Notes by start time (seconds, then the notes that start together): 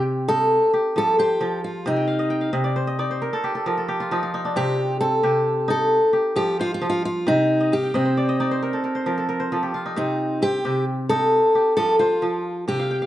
Already playing: C3 C4 G4
0.28 D#4 A4
0.73 G4
0.96 F3 A4
1.19 G4 C5
1.41 F3
1.64 F4
1.86 C3 D#4
1.96 G5
2.07 F5
2.19 D#5
2.30 G5
2.41 F5
2.53 C3 D#5
2.64 D5
2.76 C5
2.87 D#5
2.99 D#4 D5
3.11 C5
3.22 A#4
3.33 A4
3.44 G4
3.55 A4
3.66 F3 A#4
3.77 A4
3.88 G4
4.00 F4
4.11 F3 D#4
4.23 F4
4.34 D#4
4.45 D4
4.56 C3 C4 G4
5.01 C4 A4
5.23 C3 G4
5.68 D#4 A4
6.13 G4
6.36 F3 G4
6.59 F4 C5
6.74 F4
6.82 F3
6.90 F4
7.05 F4
7.27 C3 D#4
7.61 D#5
7.72 G4 F5
7.83 G5
7.94 C3 C4 D#5
8.05 C5
8.17 D5
8.29 D#5
8.40 D#4 D5
8.51 C5
8.63 A#4
8.73 A4
8.84 A#4
8.95 C5
9.06 F3 A#4
9.18 A4
9.29 A#4
9.40 C5
9.52 F3 A4
9.63 G4
9.74 F4
9.86 D#4
9.96 C3 C4 D#4
10.42 C4 G4
10.65 C3 G4
11.09 D#4 A4
11.55 G4
11.77 F3 A4
11.99 F4 C5
12.22 F3
12.68 C3 G4
12.80 F5
12.91 G5
13.02 F5